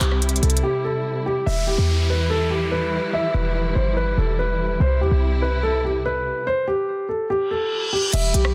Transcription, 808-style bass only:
0.01 C2
0.43 C2
1.47 E1
1.78 E2
3.34 E1
3.76 G1
4.18 E1
4.80 C2
5.01 E2
5.11 C2
8.14 E1
8.34 B1

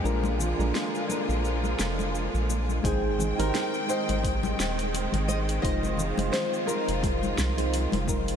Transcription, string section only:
Already playing: G#3 A#3
0.04 D3 F3 F4
2.84 G#3 C4 G5
5.64 F3 F4

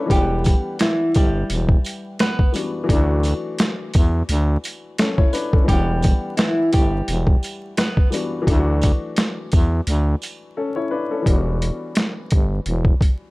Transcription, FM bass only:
0.10 E1
1.16 G1
1.50 E1
2.89 D2
3.95 E2
4.29 D2
5.68 E1
6.74 G1
7.08 E1
8.47 D2
9.53 E2
9.87 D2
11.26 E1
12.32 G1
12.66 E1

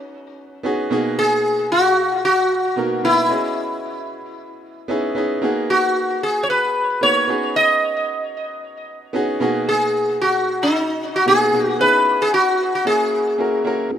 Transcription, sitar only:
Already playing: C#4
1.19 G#4
1.72 F#4
2.25 F#4
3.05 E4
5.70 F#4
6.23 G#4
6.43 C#5
6.50 B4
7.03 C#5
7.56 D#5
9.69 G#4
10.21 F#4
10.63 D#4
11.16 F#4
11.28 G#4
11.81 B4
12.22 G#4
12.34 F#4
12.75 F#4
12.87 G#4

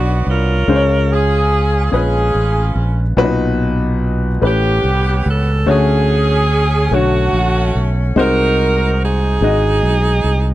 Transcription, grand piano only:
Already playing: B2 B3 D4 F#4 C#5 D5
0.68 C#3 G#3 C#4 F4 C5
0.76 C#5
1.92 G#3 C#4 F4 B4
3.17 A#2 B2 C#4 F#4 B4
3.24 D#4
4.41 A2 A3 C#4 G4 B4
5.66 D3 A3 C#4 F#4 C#5
6.92 D3 A3 F#4 C#5
8.16 C3 G#3 D#4 F#4 C5
9.42 G#3 D#4 F#4 D#5

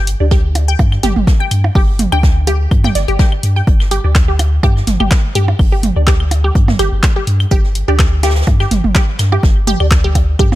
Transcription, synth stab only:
0.20 D4 G4 D5
2.12 D4 G4 D5
4.04 D4 G4 D5
5.96 D4 G4 D5
7.88 D4 G4 D5
9.80 D4 G4 D5

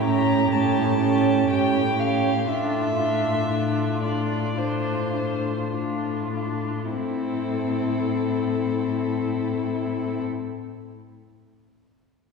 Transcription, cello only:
Already playing: A2
0.51 A2
1.49 A2
2.48 A2
3.51 A2
4.57 A2
5.72 A2
6.95 A2

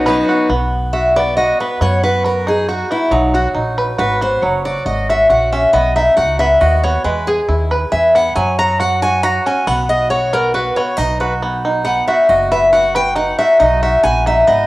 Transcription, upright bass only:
Already playing: B1
0.49 B1
1.81 F#2
3.11 B1
3.55 A#1
3.99 G#1
4.42 F#1
4.86 G#1
5.30 A#1
5.73 B1
6.18 C#2
6.62 D#2
7.05 E2
7.49 D#2
7.92 E2
8.36 F#2
9.67 B1
10.98 B1
12.29 F#1
13.61 B1
14.04 A#1
14.48 G#1

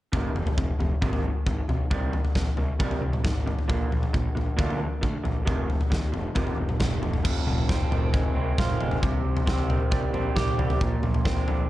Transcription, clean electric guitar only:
0.12 F2 C3 D#3
0.35 F2 C3
0.58 F2 C3
0.80 F2 C3
1.02 F2 C3 D#3
1.23 F2 C3
1.46 F2 C3
1.69 F2 C3
1.91 C3 D#3 G3
2.14 C3 D#3
2.36 C3 D#3
2.58 C3 D#3
2.79 C3 D#3 G3
3.02 C3 D#3
3.24 C3 D#3
3.46 C3 D#3
3.68 A#2 D3 A#3
3.91 A#2 D3
4.13 A#2 D3
4.35 A#2 D3
4.57 A#2 D3 A#3
4.79 A#2 D3
5.01 A#2 D3
5.24 A#2 D3
5.45 F2 C3 D#3
5.68 F2 C3
5.90 F2 C3
6.12 F2 C3
6.35 F2 C3 D#3
6.57 F2 C3
6.80 F2 C3
7.02 F2 C3
7.24 F2
7.69 C4
7.91 D#3
8.13 G#3
8.35 C4
8.58 F4
8.80 G#3
9.02 C3
9.46 C4
9.70 D#3
9.91 G3
10.13 C4
10.35 G4
10.58 G3
10.81 A#2
11.25 C4
11.48 D3

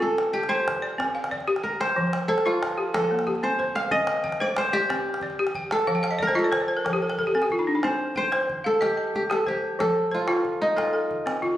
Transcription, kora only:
0.02 A4
0.33 G4
0.49 C5
1.63 A#4
1.80 C5
2.28 A4
2.46 F4
2.94 A4
3.43 C5
3.75 F5
3.91 D#5
4.41 D5
4.58 C5
4.73 G4
5.72 A4
6.22 A#4
6.39 A4
7.84 C5
8.17 C5
8.66 A4
8.82 G4
9.16 G4
9.32 A4
9.48 G4
9.80 A4
10.14 F4
10.62 D#4
10.77 F4

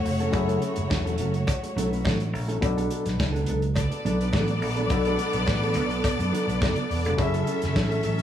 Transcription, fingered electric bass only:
0.04 F1
0.34 F#1
0.77 F#1
0.91 E1
1.19 F#1
1.76 B1
2.06 A1
2.33 A#1
2.62 B1
3.06 B1
3.20 C#2
3.49 C#2
4.05 B1
4.34 A1
4.62 A#1
4.90 B1
5.34 B1
5.48 A1
5.75 B1
6.04 B2
6.19 F#2
6.48 B1
6.62 F#1
6.90 E1
7.06 F1
7.18 F#1
7.63 F#1
7.76 A1
8.05 A1

